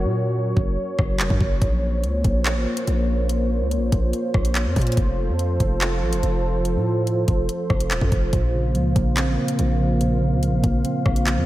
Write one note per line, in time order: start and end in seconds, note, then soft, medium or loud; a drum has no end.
0.00 1.58 F#3 medium
0.00 1.58 F#4 medium
0.00 1.58 A#4 medium
0.00 4.93 C#5 medium
0.04 0.54 A#2 loud
0.57 0.77 F#1 loud
0.57 kick medium
0.99 1.21 F#1 loud
0.99 kick loud
0.99 cross-stick loud
1.20 1.30 F1 medium
1.20 clap loud
1.30 1.40 F#2 loud
1.30 kick loud
1.41 1.61 F#1 loud
1.41 kick medium
1.62 2.05 A#1 loud
1.62 4.94 A#3 medium
1.62 11.46 F4 medium
1.62 11.46 C5 medium
1.62 kick loud
1.62 closed hi-hat medium
2.04 2.23 C#2 loud
2.04 closed hi-hat medium
2.24 2.58 A#1 loud
2.24 kick medium
2.24 closed hi-hat medium
2.45 clap loud
2.45 closed hi-hat medium
2.56 2.66 A1 medium
2.77 closed hi-hat medium
2.87 3.62 A#1 loud
2.87 closed hi-hat medium
3.29 closed hi-hat medium
3.61 3.78 C#2 loud
3.71 closed hi-hat medium
3.77 3.92 A#1 loud
3.92 4.12 A#1 loud
3.92 kick medium
3.92 closed hi-hat medium
4.13 closed hi-hat medium
4.34 4.67 A#1 loud
4.34 kick loud
4.34 cross-stick loud
4.45 closed hi-hat medium
4.55 clap loud
4.55 closed hi-hat medium
4.66 4.76 F2 loud
4.76 4.96 A#2 loud
4.76 kick medium
4.76 closed hi-hat medium
4.76 open hi-hat medium
4.82 closed hi-hat medium
4.87 closed hi-hat medium
4.92 closed hi-hat medium
4.97 5.30 F1 loud
4.97 8.30 F3 medium
4.97 8.30 A4 medium
4.97 kick loud
4.97 closed hi-hat medium
5.29 5.59 F2 loud
5.39 closed hi-hat medium
5.60 6.04 F1 loud
5.60 kick medium
5.60 closed hi-hat medium
5.81 clap loud
5.81 closed hi-hat medium
6.02 6.14 A1 loud
6.13 6.23 F1 medium
6.13 closed hi-hat medium
6.23 6.77 F1 loud
6.23 closed hi-hat medium
6.65 closed hi-hat medium
6.76 7.25 A2 loud
7.07 closed hi-hat medium
7.28 7.48 F1 loud
7.28 kick medium
7.28 closed hi-hat medium
7.49 closed hi-hat medium
7.70 7.92 F1 loud
7.70 kick loud
7.70 cross-stick loud
7.80 closed hi-hat medium
7.91 8.01 D#1 medium
7.91 clap loud
7.91 closed hi-hat medium
8.01 8.12 F2 loud
8.01 kick loud
8.12 8.32 F1 loud
8.12 kick medium
8.12 closed hi-hat medium
8.33 8.76 A#1 loud
8.33 9.38 A#2 medium
8.33 11.46 A#3 medium
8.33 11.46 F5 medium
8.33 kick loud
8.33 closed hi-hat medium
8.54 9.59 C#3 medium
8.75 8.95 C#2 loud
8.75 9.57 F3 medium
8.75 closed hi-hat medium
8.96 9.29 A#1 loud
8.96 9.37 A#3 loud
8.96 kick medium
8.96 closed hi-hat medium
9.17 10.22 C4 medium
9.17 clap loud
9.17 closed hi-hat medium
9.27 9.37 A1 medium
9.38 10.43 A#3 medium
9.48 closed hi-hat medium
9.58 10.34 A#1 loud
9.58 10.42 F3 medium
9.58 closed hi-hat medium
9.79 10.20 C#3 medium
10.01 11.06 A#2 medium
10.01 closed hi-hat medium
10.21 11.26 C#3 medium
10.32 10.49 C#2 loud
10.43 11.25 F3 medium
10.43 closed hi-hat medium
10.48 10.63 A#1 loud
10.64 10.84 A#1 loud
10.64 11.06 A#3 medium
10.64 kick medium
10.64 closed hi-hat medium
10.85 11.46 C4 medium
10.85 closed hi-hat medium
11.06 11.39 A#1 loud
11.06 11.46 A#3 medium
11.06 kick loud
11.06 cross-stick loud
11.16 closed hi-hat medium
11.27 11.46 F3 medium
11.27 clap loud
11.27 closed hi-hat medium
11.37 11.46 F2 loud